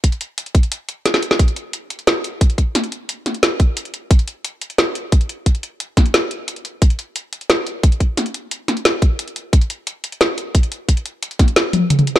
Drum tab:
HH |xxx-xxxxx-x-xxx-|xxx-x-xxx-x-xxx-|xxx-x-xxx-x-xxx-|xxx-x-xxx-x-xxx-|
SD |------------oo-o|--------o-------|o-----o-o-------|--------o-------|
T1 |----------------|----------------|----------------|----------------|
T2 |----------------|----------------|----------------|----------------|
BD |o-----o---------|o-----------o-o-|----------o-----|o-----------o---|

HH |xxx-x-xxx-x-xxx-|xxx-x-xxx-x-xxx-|xxx-x-xxx-x-xxx-|xxx-x-xxx-x-xxx-|
SD |------o-o-------|--------o-------|o-----o-o-------|--------o-------|
T1 |----------------|----------------|----------------|----------------|
T2 |----------------|----------------|----------------|----------------|
BD |o-----o---------|o-----------o-o-|----------o-----|o-----------o---|

HH |xxx-xxxxx-x-xxx-|
SD |------o-o------o|
T1 |----------o-----|
T2 |------------oo--|
BD |o-----o---------|